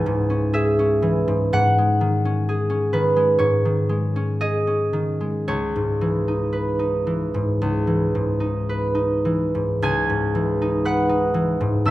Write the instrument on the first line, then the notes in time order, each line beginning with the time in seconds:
harp
Already playing: C#2 E3 C#4 G#4 G#5 A#5
0.06 G#2
0.30 C#4
0.53 G#4 E5
0.79 C#4
1.02 E3
1.28 G#2
1.53 G#2 F#5
1.78 G#3
2.01 D#3
2.25 C#4
2.49 G#4
2.70 C#4
2.93 D#3 B4
3.16 G#3
3.39 G#2 C#5
3.65 D#3
3.89 G#3
4.16 C#4
4.41 G#4 D#5
4.67 C#4
4.93 D#3
5.21 G#3
5.48 C#2 C#5
5.76 G#2
6.01 E3
6.28 D#4
6.53 B4
6.79 D#4
7.07 E3
7.34 G#2
7.62 C#2
7.87 E3
8.15 G#2
8.40 D#4
8.69 B4
8.95 D#4
9.25 E3
9.55 G#2
9.82 C#2 G#5 G#6
10.10 G#2
10.35 E3
10.62 D#4
10.85 B4 F#5 F#6
11.09 D#4
11.34 E3
11.61 G#2
11.85 C#2 E6